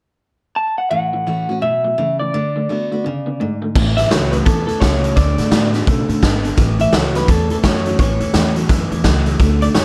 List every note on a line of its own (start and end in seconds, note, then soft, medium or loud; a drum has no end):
0.56 0.76 A5 loud
0.78 0.89 F#5 loud
0.91 1.59 A2 medium
0.91 1.10 A2 medium
0.91 1.11 E3 medium
0.91 1.58 F#5 loud
1.13 1.25 A2 medium
1.13 1.25 E3 medium
1.27 1.46 A2 medium
1.27 1.47 E3 medium
1.27 1.46 E3 medium
1.27 1.48 A3 medium
1.27 1.48 C#4 medium
1.27 1.48 F#4 medium
1.49 1.61 A2 medium
1.49 1.61 E3 medium
1.49 1.63 C#4 soft
1.49 1.61 F#4 medium
1.62 1.82 A2 medium
1.62 1.96 B2 medium
1.62 1.82 F#3 medium
1.62 2.15 E5 medium
1.84 1.96 A2 medium
1.84 1.96 F#3 medium
1.98 2.17 A2 medium
1.98 2.32 C#3 medium
1.98 2.18 E3 loud
2.19 2.32 A2 medium
2.19 2.32 E3 medium
2.19 3.57 D5 medium
2.34 2.68 D3 medium
2.34 2.53 D3 medium
2.34 2.53 A3 medium
2.56 2.67 D3 medium
2.56 2.68 A3 medium
2.69 2.90 D3 medium
2.69 2.88 D3 medium
2.69 2.90 A3 medium
2.69 2.89 A3 medium
2.69 2.90 B3 medium
2.69 2.90 F#4 medium
2.92 3.03 D3 medium
2.92 3.03 A3 medium
2.92 3.05 B3 soft
2.92 3.04 F#4 medium
3.04 3.39 C#3 medium
3.04 3.24 D3 medium
3.04 3.24 B3 medium
3.26 3.38 D3 medium
3.26 3.38 B3 medium
3.40 3.74 G#2 medium
3.40 3.59 D3 medium
3.40 3.59 A3 medium
3.62 3.74 D3 medium
3.62 3.74 A3 medium
3.75 4.03 A1 loud
3.75 4.43 A2 medium
3.75 3.95 A2 medium
3.75 3.95 E3 medium
3.75 kick loud
3.75 crash loud
3.97 4.09 A2 medium
3.97 4.09 E3 medium
3.97 4.11 E5 loud
3.97 snare soft
3.97 closed hi-hat medium
4.10 4.39 C#2 medium
4.10 4.30 A2 medium
4.10 4.31 E3 medium
4.10 4.30 F#3 medium
4.10 4.31 A3 medium
4.10 4.32 C#4 medium
4.10 4.31 F#4 medium
4.10 4.31 C#5 medium
4.10 snare loud
4.10 closed hi-hat medium
4.31 4.44 A2 medium
4.31 4.44 F#3 medium
4.31 4.46 C#4 soft
4.31 4.45 F#4 medium
4.31 4.36 B4 medium
4.31 closed hi-hat medium
4.45 4.74 E2 medium
4.45 4.65 A2 medium
4.45 4.80 B2 medium
4.45 4.65 E3 medium
4.45 4.66 A4 loud
4.45 kick loud
4.45 closed hi-hat medium
4.67 4.79 A2 medium
4.67 4.80 E3 medium
4.67 4.81 A4 medium
4.67 closed hi-hat medium
4.80 5.09 C#2 medium
4.80 5.01 A2 medium
4.80 5.15 C#3 medium
4.80 5.01 F#3 loud
4.80 5.13 C#5 medium
4.80 kick medium
4.80 snare loud
4.80 closed hi-hat medium
5.03 5.15 A2 medium
5.03 5.15 F#3 medium
5.03 closed hi-hat medium
5.16 5.34 D2 loud
5.16 5.36 D3 medium
5.16 5.50 D3 medium
5.16 5.36 A3 medium
5.16 5.69 D5 medium
5.16 kick loud
5.16 snare soft
5.16 closed hi-hat medium
5.38 5.49 A2 medium
5.38 5.50 D3 medium
5.38 5.51 A3 medium
5.38 snare soft
5.38 closed hi-hat medium
5.51 5.79 A2 loud
5.51 5.72 D3 medium
5.51 5.71 D3 medium
5.51 5.72 A3 medium
5.51 5.73 B3 medium
5.51 5.72 B3 medium
5.51 5.73 F#4 loud
5.51 snare loud
5.51 closed hi-hat medium
5.73 5.86 D3 medium
5.73 5.86 B3 medium
5.73 5.87 B3 medium
5.73 5.87 F#4 medium
5.73 snare soft
5.73 closed hi-hat medium
5.87 6.04 B2 medium
5.87 6.21 C#3 medium
5.87 6.07 D3 medium
5.87 6.07 A3 medium
5.87 kick loud
5.87 closed hi-hat medium
6.09 6.19 A2 medium
6.09 6.21 D3 medium
6.09 6.21 A3 medium
6.09 closed hi-hat medium
6.22 6.50 G#1 medium
6.22 6.56 G#2 medium
6.22 6.42 D3 medium
6.22 6.42 B3 loud
6.22 kick medium
6.22 snare loud
6.22 closed hi-hat medium
6.44 6.56 D3 medium
6.44 6.56 B3 medium
6.44 closed hi-hat medium
6.57 6.86 A1 medium
6.57 6.77 A2 loud
6.57 7.26 A2 loud
6.57 6.77 E3 medium
6.57 kick loud
6.57 snare soft
6.57 closed hi-hat medium
6.79 6.91 A2 medium
6.79 6.92 E3 medium
6.79 6.95 E5 loud
6.79 closed hi-hat medium
6.92 7.20 C#2 medium
6.92 7.13 A2 medium
6.92 7.14 E3 medium
6.92 7.13 F#3 loud
6.92 7.14 A3 medium
6.92 7.14 C#4 medium
6.92 7.12 F#4 loud
6.92 7.16 C#5 medium
6.92 snare loud
6.92 closed hi-hat medium
7.13 7.27 A2 medium
7.13 7.27 F#3 medium
7.13 7.28 C#4 soft
7.13 7.27 F#4 medium
7.13 7.28 B4 medium
7.13 snare soft
7.13 closed hi-hat medium
7.28 7.96 E2 medium
7.28 7.56 E2 medium
7.28 7.48 A2 medium
7.28 7.48 E3 medium
7.28 7.50 A4 medium
7.28 kick loud
7.28 closed hi-hat medium
7.50 7.62 A2 medium
7.50 7.63 E3 medium
7.50 7.57 A4 medium
7.50 closed hi-hat medium
7.63 7.92 F#2 medium
7.63 7.83 A2 medium
7.63 7.84 E3 medium
7.63 7.83 F#3 medium
7.63 7.84 A3 medium
7.63 7.85 C#4 medium
7.63 7.83 F#4 loud
7.63 7.98 C#5 loud
7.63 kick medium
7.63 snare loud
7.63 closed hi-hat loud
7.84 7.98 A2 medium
7.84 7.98 F#3 medium
7.84 7.99 C#4 medium
7.84 7.98 F#4 medium
7.84 closed hi-hat medium
7.99 8.16 A1 loud
7.99 8.19 A2 medium
7.99 8.67 A2 medium
7.99 8.19 E3 medium
7.99 8.52 C#5 medium
7.99 kick loud
7.99 closed hi-hat medium
8.20 8.31 E2 medium
8.20 8.32 A2 medium
8.20 8.33 E3 medium
8.20 closed hi-hat medium
8.34 8.61 E2 medium
8.34 8.54 A2 medium
8.34 8.55 E3 medium
8.34 8.54 F#3 loud
8.34 8.55 A3 medium
8.34 8.55 C#4 medium
8.34 8.55 F#4 medium
8.34 snare loud
8.34 closed hi-hat loud
8.56 8.68 A2 medium
8.56 8.68 F#3 medium
8.56 8.70 C#4 soft
8.56 8.69 F#4 medium
8.56 closed hi-hat medium
8.69 9.38 E2 medium
8.69 8.87 F#2 medium
8.69 8.89 A2 medium
8.69 8.89 E3 medium
8.69 kick loud
8.69 snare soft
8.69 closed hi-hat medium
8.90 9.01 E2 medium
8.90 9.03 A2 medium
8.90 9.04 E3 medium
8.90 closed hi-hat medium
9.04 9.32 C#2 medium
9.04 9.25 A2 medium
9.04 9.38 E3 medium
9.04 9.25 F#3 loud
9.04 9.39 A3 medium
9.04 9.39 C#4 medium
9.04 9.39 F#4 loud
9.04 kick medium
9.04 snare loud
9.04 closed hi-hat medium
9.26 9.39 A2 medium
9.26 9.39 F#3 medium
9.26 closed hi-hat medium
9.39 9.68 D2 loud
9.39 9.74 D3 medium
9.39 9.60 D3 medium
9.39 9.60 A3 medium
9.39 kick loud
9.39 snare soft
9.39 closed hi-hat medium
9.62 9.74 D3 medium
9.62 9.74 A3 medium
9.62 9.67 D5 loud
9.62 closed hi-hat medium
9.74 9.85 F#2 medium
9.74 9.85 D3 medium
9.74 9.85 A3 medium
9.74 9.85 B3 loud
9.74 9.85 B3 medium
9.74 9.85 F#4 medium
9.74 9.85 C#5 medium
9.74 snare loud
9.74 closed hi-hat medium